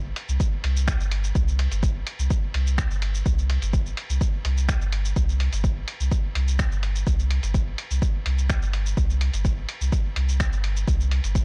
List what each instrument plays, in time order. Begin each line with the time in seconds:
Already playing: sub bass G1
0.16 closed hi-hat, ride
0.29 sub bass C2, shaker
0.40 kick, ride, shaker
0.64 sub bass C2, closed hi-hat, ride
0.76 shaker
0.88 finger snap, kick, ride, shaker
1.00 sub bass G1, shaker
1.11 closed hi-hat, ride
1.24 shaker
1.35 sub bass C2, kick, ride, shaker
1.48 shaker
1.59 closed hi-hat, ride
1.72 sub bass G1, closed hi-hat, shaker
1.83 kick, ride, shaker
2.07 closed hi-hat, ride
2.19 sub bass C2, shaker
2.31 kick, ride, shaker
2.54 sub bass C2, closed hi-hat, ride
2.67 shaker
2.78 finger snap, kick, ride, shaker
2.91 sub bass G1, shaker
3.02 closed hi-hat, ride
3.15 shaker
3.26 sub bass C2, kick, ride, shaker
3.38 shaker
3.50 closed hi-hat, ride
3.62 sub bass G1, closed hi-hat, shaker
3.73 kick, ride, shaker
3.86 shaker
3.97 closed hi-hat, ride
4.10 sub bass C2, shaker
4.21 kick, ride, shaker
4.45 sub bass C2, closed hi-hat, ride
4.57 shaker
4.69 finger snap, kick, ride, shaker
4.81 sub bass G1, shaker
4.92 closed hi-hat, ride
5.05 shaker
5.16 sub bass C2, kick, ride, shaker
5.29 shaker
5.40 closed hi-hat, ride
5.53 sub bass G1, closed hi-hat, shaker
5.64 kick, ride, shaker
5.88 closed hi-hat, ride
6.00 sub bass C2, shaker
6.12 kick, ride, shaker
6.35 sub bass C2, closed hi-hat, ride
6.48 shaker
6.59 finger snap, kick, ride, shaker
6.72 sub bass G1, shaker
6.83 closed hi-hat, ride
6.95 shaker
7.07 sub bass C2, kick, ride, shaker
7.19 shaker
7.31 closed hi-hat, ride
7.43 sub bass G1, closed hi-hat, shaker
7.54 kick, ride, shaker
7.78 closed hi-hat, ride
7.91 sub bass C2, shaker
8.02 kick, ride, shaker
8.26 sub bass C2, closed hi-hat, ride
8.38 shaker
8.50 finger snap, kick, ride, shaker
8.62 sub bass G1, shaker
8.73 closed hi-hat, ride
8.86 shaker
8.97 sub bass C2, kick, ride, shaker
9.10 shaker
9.21 closed hi-hat, ride
9.34 sub bass G1, closed hi-hat, shaker
9.45 kick, ride, shaker
9.69 closed hi-hat, ride
9.81 sub bass C2, shaker
9.92 kick, ride, shaker
10.16 sub bass C2, closed hi-hat, ride
10.29 shaker
10.40 finger snap, kick, ride, shaker
10.53 sub bass G1, shaker
10.64 closed hi-hat, ride
10.76 shaker
10.88 sub bass C2, kick, ride, shaker
11.00 shaker
11.11 closed hi-hat, ride
11.24 sub bass G1, closed hi-hat, shaker
11.35 kick, ride, shaker